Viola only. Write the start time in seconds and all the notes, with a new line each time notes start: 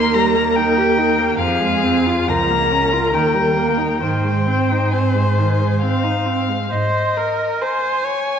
Already playing: A#3
0.14 G3
0.36 A#3
0.57 D#4
0.77 G4
0.98 D#4
1.18 A#3
1.39 F3
1.61 G#3
1.83 C4
2.06 F4
2.29 F3
2.50 A#3
2.72 C#4
2.93 F4
3.13 D#3
3.34 G3
3.56 A#3
3.78 D#4
4.01 D#3
4.24 G#3
4.47 C4
4.71 D#4
4.92 C4
5.15 G#3
5.37 D#3
5.60 G#3
5.82 C4
6.03 D#4
6.26 C4
6.49 G#3
6.71 C5
7.17 A#4
7.62 C5
8.04 C#5